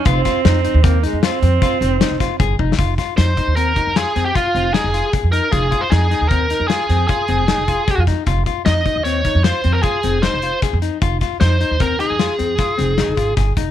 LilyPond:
<<
  \new Staff \with { instrumentName = "Lead electric guitar" } { \time 7/4 \key f \minor \tempo 4 = 153 r1. r4 | r4 c''4 bes'4 aes'8. g'16 f'4 aes'4 r8 bes'8 | aes'8. c''16 aes'4 bes'4 aes'4 aes'2~ aes'8 r8 | r4 ees''4 des''4 c''8. bes'16 aes'4 c''4 r4 |
r4 c''4 bes'8 aes'2.~ aes'8 r4 | }
  \new Staff \with { instrumentName = "Clean electric guitar" } { \time 7/4 \key f \minor f'8 f'8 ees'8 ees'8 c'8 ees'8 f'8 c'8 f'8 c'8 ees'8 f'8 aes'8 ees'8 | f'8 f'8 ees'8 ees'8 c'8 ees'8 f'8 c'8 f'8 c'8 ees'8 f'8 aes'8 ees'8 | f'8 f'8 ees'8 ees'8 c'8 ees'8 f'8 c'8 f'8 c'8 ees'8 f'8 aes'8 ees'8 | f'8 f'8 ees'8 ees'8 c'8 ees'8 f'8 c'8 f'8 c'8 ees'8 f'8 aes'8 ees'8 |
f'8 f'8 ees'8 ees'8 c'8 ees'8 f'8 c'8 f'8 c'8 ees'8 f'8 aes'8 ees'8 | }
  \new Staff \with { instrumentName = "Alto saxophone" } { \time 7/4 \key f \minor c'2 bes8 aes8 c'2.~ c'8 r8 | r1. r4 | r1. r4 | r1. r4 |
r1. r4 | }
  \new Staff \with { instrumentName = "Upright bass" } { \clef bass \time 7/4 \key f \minor f,,8 r8 f,8. ees,4 f,8 r16 f,8 r8 f,,8. f,,8 r16 g,,8 f,,8 | f,,8 r8 f,8. ees,4 f,8 r16 f,8 r8 f,,8. f,,8 r8 f,8 r16 | f,,8 r8 f,8. ees,4 f,8 r16 f,8 r8 f,,8. f,,8 r8 f,8 r16 | f,,8 r8 f,8. ees,4 f,8 r16 f,8 r8 f,,8. f,,8 r8 f,8 r16 |
f,,8 r8 f,8. ees,4 f,8 r16 f,8 r8 f,,8. f,,16 aes,,8 g,,8 f,,8 | }
  \new DrumStaff \with { instrumentName = "Drums" } \drummode { \time 7/4 <hh bd>8 <hh bd sn>8 <hh sn>8 hh8 <hh bd sn>8 hh8 <hh sn>8 hh8 <hh bd sn>8 hh8 <hh sn>8 <hh bd sn>8 \tuplet 3/2 { <hh bd>16 r16 r16 bd16 r16 sn16 } | <hh bd>8 <hh bd sn>8 <hh sn>8 <hh bd>8 hh8 <hh bd>8 <hh sn>8 <hh sn>8 <hh bd sn>8 hh8 <hh sn>8 hh8 <hh bd>8 hh8 | <hh bd>8 <hh bd>8 <hh sn>8 <hh sn>8 <hh bd>8 hh8 <hh sn>8 <hh sn>8 <hh bd>8 hh8 <hh sn>8 <hh bd>8 <hh bd sn>8 <hh bd sn>8 | <hh bd>8 <hh bd>8 <hh sn>8 <hh bd>8 hh8 <hh bd>8 <hh sn>8 hh8 <hh bd>8 hh8 <hh sn>8 hh8 <hh bd sn>8 hh8 |
<hh bd>8 <hh bd sn>8 <hh sn>8 hh8 <hh bd>8 hh8 <hh sn>8 hh8 <hh bd sn>8 hh8 <hh sn>8 <hh bd>8 <hh bd sn>8 <hh bd>8 | }
>>